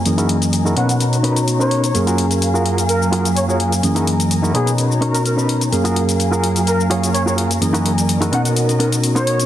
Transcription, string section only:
0.00 0.74 F#3 medium
0.00 0.74 G#5 medium
0.06 0.76 A#4 medium
0.06 0.76 D#5 medium
0.77 1.94 D#4 medium
0.77 1.94 C#5 medium
0.77 1.94 A#5 medium
1.95 4.52 F#3 medium
1.95 3.82 A#4 medium
1.95 3.82 F5 medium
1.95 4.52 G#5 medium
3.84 4.54 A#4 medium
3.84 4.54 D#5 medium
4.55 5.72 D#4 medium
4.55 5.72 C#5 medium
4.55 5.72 A#5 medium
5.73 8.30 F#3 medium
5.73 9.46 A#4 medium
5.73 7.60 F5 medium
5.73 7.60 G#5 medium
7.62 9.46 D#5 medium
7.62 8.32 G#5 medium
8.33 9.46 C#4 medium

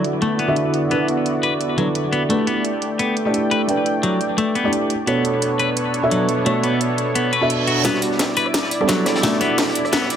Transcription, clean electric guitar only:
0.22 0.38 A3 medium
0.39 0.55 B3 medium
0.91 1.07 B3 medium
1.43 1.53 B4 medium
1.78 1.88 F#3 medium
2.12 2.22 B3 medium
2.30 2.46 A3 medium
2.47 2.63 B3 medium
2.99 3.15 B3 medium
3.51 3.61 B4 medium
4.03 4.19 F#3 medium
4.38 4.54 A3 medium
4.55 4.71 B3 medium
5.08 5.23 B3 medium
5.59 5.69 B4 medium
6.11 6.27 F#3 medium
6.46 6.63 A3 medium
6.63 6.79 B3 medium
7.15 7.31 B3 medium
7.33 7.49 B4 medium
7.67 7.84 F#4 medium
7.85 8.01 B3 medium
8.37 8.47 B4 medium
8.89 9.04 F#3 medium
9.23 9.40 A3 loud
9.41 9.57 B3 loud
9.93 10.09 B3 medium

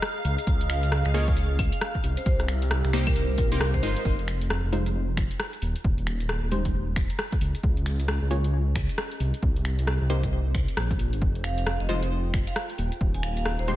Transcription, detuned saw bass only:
0.25 0.37 C#2 loud
0.47 1.03 C#2 loud
1.05 1.70 C#2 loud
2.04 2.16 C2 loud
2.26 2.82 C2 loud
2.84 3.37 C2 loud
3.38 3.53 A#1 medium
3.52 3.82 C2 medium
3.83 3.95 G1 loud
4.05 4.62 F1 loud
4.64 5.29 F1 medium
5.62 5.74 D#1 medium
5.84 6.41 D#1 loud
6.43 7.08 D#1 medium
7.41 7.53 C#2 loud
7.63 8.20 C#2 loud
8.22 8.87 C#2 loud
9.20 9.32 C2 loud
9.43 9.99 C2 loud
10.01 10.66 C2 loud
10.77 11.14 A#1 medium
11.13 11.21 G1 medium
11.22 11.78 F1 loud
11.80 12.45 F1 loud
12.78 12.91 D#1 loud
13.01 13.57 D#1 medium
13.59 13.76 D#1 loud

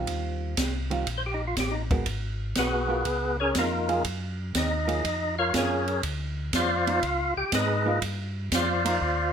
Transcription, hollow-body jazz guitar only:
0.00 0.54 D#3 medium
0.00 0.54 G3 medium
0.00 0.54 C4 medium
0.00 0.55 F4 medium
0.90 1.05 D#3 medium
0.90 1.05 G3 medium
0.90 1.05 C4 medium
0.90 1.06 F4 medium
1.91 2.05 G#3 medium
1.91 2.05 B3 medium
1.91 2.05 F#4 medium
1.91 2.05 A#4 medium
2.89 3.03 B3 medium
2.89 3.04 F4 medium
2.89 3.04 A#4 medium
3.89 4.03 F#3 medium
3.89 4.03 A#3 medium
3.89 4.03 F4 medium
3.89 4.03 G#4 medium
4.87 5.02 F#3 medium
4.87 5.02 A#3 medium
4.87 5.02 F4 medium
4.87 5.03 G#4 medium
5.54 5.84 F#3 medium
5.54 5.85 A#3 medium
5.54 5.85 F4 medium
5.54 5.85 G#4 medium
6.87 7.01 B3 medium
6.87 7.01 D#4 medium
6.87 7.02 F4 medium
7.86 8.00 A#3 medium
7.86 8.00 D#4 medium
7.86 8.01 F4 medium
8.85 8.99 A#3 medium
8.85 9.00 D#4 medium
8.85 9.00 F4 medium

